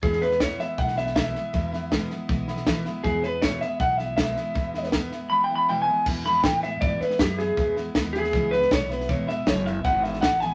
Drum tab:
CC |----------------|----------------|----------------|----------------|
HH |----p-------p---|----p-------p---|----p-------p---|----p-----------|
SD |ooooo-o-ooooo-o-|o-o-o-o-o-ooo-o-|o-o-o-o-o-o-o-o-|o-ooo-o---------|
BD |o---o---o---o---|o---o---o---o---|o---o---o---o---|o---o-----------|

CC |x---------------|----------------|----------------|
HH |----p-------p---|----p-------p---|----p-------p---|
SD |o-o-o-o-o-ooo-o-|o-o-o-ooo-ooo-oo|o-o-o-o-o-ooo-o-|
BD |o---o---o---o---|o---o---o---o---|o---o---o---o---|